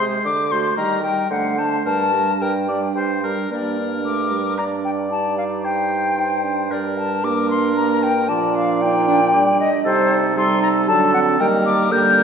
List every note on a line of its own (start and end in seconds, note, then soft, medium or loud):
0.00 0.19 C3 loud
0.00 0.25 G#3 medium
0.00 0.25 G#4 medium
0.00 0.24 C5 medium
0.25 0.71 D3 loud
0.25 0.53 D6 loud
0.51 0.77 A3 medium
0.51 0.77 F#4 medium
0.51 0.76 C5 medium
0.51 0.76 C6 loud
0.76 1.25 D#3 medium
0.76 1.04 G3 medium
0.76 1.03 G4 medium
0.76 1.03 A#4 medium
0.76 1.02 A#5 loud
1.03 1.30 G3 medium
1.03 1.30 G4 medium
1.03 1.30 A#4 medium
1.03 1.30 G5 loud
1.30 1.80 D3 medium
1.30 1.58 A3 medium
1.30 1.57 D4 medium
1.30 1.57 C5 medium
1.30 1.60 F#5 loud
1.57 1.85 A3 medium
1.57 1.85 D4 medium
1.57 1.85 C5 medium
1.57 1.85 A5 loud
1.85 2.35 G2 medium
1.85 2.13 G3 medium
1.85 2.13 D4 medium
1.85 2.13 A#4 medium
1.85 2.43 A5 loud
2.13 2.68 G3 medium
2.13 2.68 D4 medium
2.13 2.35 A#4 medium
2.41 2.90 G2 medium
2.41 2.54 A#4 medium
2.41 3.24 G5 medium
2.68 3.23 G3 medium
2.68 3.23 D4 medium
2.68 2.81 D5 medium
2.96 3.36 G2 medium
2.96 3.23 C5 loud
3.23 3.50 G3 medium
3.23 3.50 D4 medium
3.23 3.50 A#4 medium
3.51 6.67 G2 medium
3.51 4.01 A#3 medium
3.51 3.76 D4 medium
3.51 4.60 A#4 medium
3.51 4.01 D5 loud
3.78 4.56 D4 medium
4.04 4.33 A3 medium
4.04 4.57 D6 loud
4.32 6.71 G3 medium
4.58 5.10 D4 medium
4.58 5.66 D5 medium
4.58 4.64 A#5 medium
4.85 4.91 G5 loud
5.10 6.15 D#4 medium
5.10 5.37 A5 loud
5.38 5.44 F5 medium
5.64 6.17 C5 medium
5.64 6.69 G5 loud
6.17 6.43 D#4 medium
6.17 6.73 C5 medium
6.43 7.22 D4 medium
6.71 8.31 G2 medium
6.71 7.26 G3 medium
6.71 7.24 A#4 medium
6.71 6.99 D5 loud
6.98 7.26 A5 loud
7.24 7.76 A#3 loud
7.24 8.12 D4 loud
7.24 8.27 A#4 medium
7.24 7.50 D6 loud
7.50 7.76 C6 loud
7.76 8.31 A#3 medium
7.76 8.04 A#5 loud
8.03 8.30 G5 loud
8.28 9.68 A#2 loud
8.28 9.35 F3 loud
8.28 8.83 D4 medium
8.28 9.31 D5 medium
8.28 8.56 A5 loud
8.55 8.83 F5 loud
8.81 9.07 D#4 loud
8.81 9.59 G5 loud
9.07 9.19 D4 loud
9.33 9.70 G3 loud
9.33 9.84 D4 medium
9.33 9.70 D5 loud
9.60 9.85 D#5 loud
9.85 10.90 C3 loud
9.85 10.33 G3 loud
9.85 10.34 D#4 medium
9.85 10.33 A4 loud
9.85 10.18 C5 loud
10.37 10.90 G3 loud
10.37 10.91 D#4 loud
10.37 10.87 A4 loud
10.37 10.61 C6 loud
10.62 10.68 A#5 loud
10.88 11.40 D3 loud
10.88 11.39 F#3 loud
10.88 11.16 D4 medium
10.88 11.41 A4 loud
10.88 11.13 A5 loud
11.14 11.42 C4 medium
11.14 11.20 F#5 loud
11.40 11.93 D#3 loud
11.40 11.91 G3 loud
11.40 11.91 A#3 medium
11.40 11.91 A#4 loud
11.40 11.46 G5 loud
11.66 11.93 D6 loud
11.91 12.23 D3 loud
11.91 12.23 G3 loud
11.91 12.23 A#3 loud
11.91 12.23 A#4 loud
11.91 12.23 G6 loud